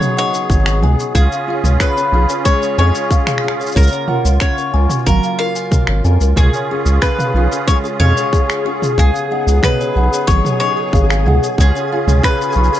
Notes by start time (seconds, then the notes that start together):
Already playing: C#3 F#3 B3 D#4 G#4 C#5
0.01 C#5, mid tom, shaker
0.17 D#4 C#5 F#5
0.33 C#5, shaker
0.49 G#1 G#4 C#6, kick, shaker
0.66 C#5, finger snap, shaker
0.82 C#2 B3 D#4 G#4 G#5, mid tom
1.00 C#6, shaker
1.14 C#2 C#3 C#4 F4 G#4 F5, kick, shaker
1.32 F5, shaker
1.47 C#4 F4 G#4 F5
1.64 C#2 C#5, mid tom, shaker
1.80 C#4 B4 C#5, finger snap, kick, shaker
1.97 C#5, shaker
2.12 B1 C#4 F4 G#4 F5
2.29 C#5, shaker
2.45 G#3 C#5 C#6, kick, shaker
2.62 C#5, shaker
2.78 F2 D#4 C#5 G#5
2.95 F4 C#6, shaker
3.11 G#4 F5, kick, shaker
3.27 F5, finger snap, mid tom, shaker
3.38 finger snap
3.44 C#4 F4 G#4 F5
3.48 finger snap
3.60 C#5, shaker
3.66 shaker
3.72 C#5, shaker
3.76 C#2 C#3 A#3 A#4, kick, shaker
3.82 shaker
3.87 shaker
3.92 C#5, shaker
4.08 C#4 F4 A#4 F#5, mid tom
4.25 C#2 C#5, shaker
4.40 C#4 C#5 C#6, finger snap, kick, shaker
4.58 C#5, shaker
4.74 C#2 C#4 F4 A#4 G#5
4.89 C#6, mid tom, shaker
5.06 G#1 F#3 A#4 F5, kick, shaker
5.23 F5, shaker
5.39 F4 A#4 F5
5.56 G#5, shaker
5.71 A#4 C#5, kick, mid tom, shaker
5.87 G#1 C#5, finger snap
6.04 F2 C#4 F4 A#4 G#5, shaker
6.21 C#2 A#4, shaker
6.36 C#2 C#3 C#4 G#4 G#5 C#6, kick, mid tom, shaker
6.54 C#5, shaker
6.71 C#4 F4 G#4 C#6
6.86 C#2 C#6, shaker
7.02 C#4 B4 F5, finger snap, kick, shaker
7.19 F5, mid tom, shaker
7.34 B1 C#4 F4 G#4 F5
7.52 C#5, shaker
7.68 G#3 C#5, kick, shaker
7.84 C#5, shaker
8.00 F2 D#4 C#5 F5, mid tom
8.17 F4 C#5, shaker
8.33 G#4 C#6, kick, shaker
8.50 C#5, finger snap, shaker
8.65 C#4 F4 G#4 C#6
8.82 C#6, mid tom, shaker
8.98 C#2 C#3 F#3 B3 G#4 F5, kick, shaker
9.14 F5, shaker
9.31 B3 D#4 G#4 F#5
9.47 C#2 C#5, shaker
9.63 B3 B4 C#5, finger snap, kick, mid tom, shaker
9.81 C#5, shaker
9.96 B1 B3 D#4 G#4 F#5
10.13 C#5, shaker
10.27 G#1 F#3 C#5 C#6, kick, shaker
10.45 C#5, mid tom, shaker
10.60 D#4 C#5 C#6
10.78 C#6
10.93 G#1 G#4 F5, kick, shaker
11.10 F5, finger snap, shaker
11.26 C#2 B3 D#4 G#4 F#5, mid tom
11.44 C#5, shaker
11.58 C#2 C#3 C#4 F4 G#4 C#5, kick, shaker
11.75 C#5, shaker
11.92 C#4 F4 G#4 F5
12.07 C#2 C#5, mid tom, shaker
12.23 C#4 B4 C#6, finger snap, kick, shaker
12.41 C#5, shaker
12.52 B1, shaker
12.57 C#4 F4 G#4 C#6
12.64 shaker
12.73 C#6, shaker